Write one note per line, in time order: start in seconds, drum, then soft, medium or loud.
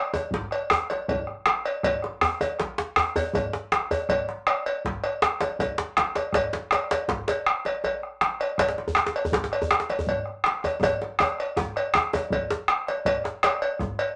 0.14 cowbell soft
0.14 djembe tone loud
0.31 bombo low medium
0.31 djembe slap medium
0.31 djembe tone medium
0.31 djembe bass medium
0.51 bombo rim soft
0.51 cowbell soft
0.70 bombo rim loud
0.70 djembe tone loud
0.90 cowbell soft
0.90 djembe slap medium
0.90 djembe tone medium
1.08 bombo low loud
1.08 cowbell medium
1.08 djembe bass medium
1.27 bombo rim soft
1.27 djembe slap soft
1.46 bombo rim loud
1.46 djembe slap medium
1.46 djembe tone medium
1.65 bombo rim soft
1.65 cowbell soft
1.83 bombo rim soft
1.83 bombo low loud
1.83 cowbell medium
1.83 djembe slap soft
1.83 djembe bass medium
2.02 bombo rim soft
2.02 djembe slap medium
2.02 djembe tone medium
2.21 bombo rim loud
2.21 djembe bass loud
2.41 cowbell medium
2.41 djembe tone medium
2.59 bombo rim soft
2.59 djembe slap medium
2.59 djembe tone medium
2.59 djembe bass medium
2.78 djembe slap medium
2.78 djembe slap soft
2.96 bombo rim loud
2.96 djembe slap soft
2.96 djembe bass medium
3.16 cowbell medium
3.16 djembe tone medium
3.16 djembe bass loud
3.33 bombo low medium
3.33 cowbell medium
3.33 djembe tone medium
3.33 djembe bass medium
3.53 djembe slap medium
3.72 bombo rim medium
3.72 djembe slap medium
3.72 djembe tone medium
3.91 cowbell soft
3.91 djembe bass medium
4.09 bombo rim soft
4.09 bombo low medium
4.09 cowbell medium
4.09 djembe bass medium
4.29 djembe slap medium
4.29 djembe tone medium
4.47 bombo rim medium
4.47 cowbell medium
4.47 djembe slap soft
4.66 cowbell medium
4.66 djembe slap soft
4.85 bombo low medium
4.85 djembe slap medium
4.85 djembe tone medium
4.85 djembe bass medium
5.04 bombo rim soft
5.04 cowbell medium
5.04 djembe slap soft
5.22 bombo rim medium
5.22 djembe slap loud
5.40 cowbell soft
5.40 djembe slap medium
5.42 djembe slap medium
5.42 djembe tone medium
5.59 bombo low medium
5.59 cowbell soft
5.59 djembe slap medium
5.59 djembe bass medium
5.78 bombo rim soft
5.78 djembe slap loud
5.78 djembe slap soft
5.97 bombo rim medium
5.97 djembe slap medium
5.97 djembe tone medium
6.15 bombo rim soft
6.15 cowbell soft
6.15 djembe slap medium
6.33 bombo rim soft
6.33 bombo low medium
6.33 cowbell medium
6.33 djembe slap loud
6.33 djembe bass medium
6.53 djembe slap medium
6.53 djembe tone medium
6.71 bombo rim medium
6.71 cowbell soft
6.71 djembe slap medium
6.90 cowbell medium
6.90 djembe slap soft
6.90 djembe slap loud
7.08 bombo low medium
7.08 djembe slap medium
7.08 djembe tone medium
7.08 djembe bass medium
7.28 bombo rim soft
7.28 cowbell medium
7.28 djembe slap medium
7.46 bombo rim medium
7.65 cowbell medium
7.65 djembe slap medium
7.65 djembe tone medium
7.84 cowbell medium
7.84 djembe bass medium
8.03 bombo rim soft
8.03 djembe slap soft
8.21 bombo rim medium
8.21 djembe slap medium
8.21 djembe tone medium
8.40 bombo rim soft
8.40 cowbell medium
8.58 bombo rim soft
8.58 bombo low medium
8.58 cowbell medium
8.58 djembe slap loud
8.58 djembe bass medium
8.69 djembe slap medium
8.78 djembe slap medium
8.78 djembe tone medium
8.88 djembe bass medium
8.95 bombo rim loud
8.95 djembe slap loud
9.06 djembe slap medium
9.15 cowbell medium
9.15 djembe slap soft
9.25 djembe bass medium
9.32 bombo low medium
9.32 djembe slap medium
9.32 djembe slap loud
9.32 djembe tone medium
9.32 djembe bass medium
9.44 djembe slap medium
9.52 bombo rim soft
9.52 cowbell medium
9.52 djembe slap soft
9.62 djembe bass medium
9.71 bombo rim medium
9.71 djembe slap loud
9.80 djembe slap medium
9.90 cowbell medium
9.90 djembe slap medium
9.90 djembe tone medium
9.99 djembe bass medium
10.07 bombo low medium
10.07 cowbell medium
10.26 bombo rim soft
10.26 djembe slap soft
10.44 bombo rim medium
10.44 djembe slap medium
10.63 bombo rim soft
10.63 cowbell soft
10.63 djembe tone medium
10.81 bombo rim soft
10.81 bombo low medium
10.81 cowbell medium
10.81 djembe slap soft
10.81 djembe tone loud
10.81 djembe bass medium
11.02 djembe slap medium
11.02 djembe tone medium
11.19 bombo rim loud
11.19 cowbell soft
11.19 djembe tone loud
11.38 bombo rim soft
11.38 cowbell soft
11.56 bombo rim soft
11.56 bombo low medium
11.56 djembe slap medium
11.56 djembe tone medium
11.56 djembe tone loud
11.76 bombo rim soft
11.76 cowbell medium
11.94 bombo rim loud
11.94 djembe slap soft
11.94 djembe tone loud
12.13 cowbell soft
12.13 djembe slap medium
12.13 djembe tone medium
12.13 djembe tone loud
12.30 bombo low loud
12.30 cowbell medium
12.30 djembe bass medium
12.50 djembe slap medium
12.50 djembe bass soft
12.68 bombo rim medium
12.68 djembe slap soft
12.87 bombo rim soft
12.87 cowbell medium
12.87 djembe slap medium
13.05 bombo low medium
13.05 cowbell medium
13.05 djembe bass medium
13.24 bombo rim soft
13.24 djembe slap medium
13.24 djembe tone medium
13.43 bombo rim loud
13.43 cowbell medium
13.43 djembe slap medium
13.62 cowbell medium
13.79 bombo rim soft
13.79 bombo low medium
13.79 djembe tone medium
13.79 djembe bass medium
13.98 cowbell medium
13.98 djembe slap soft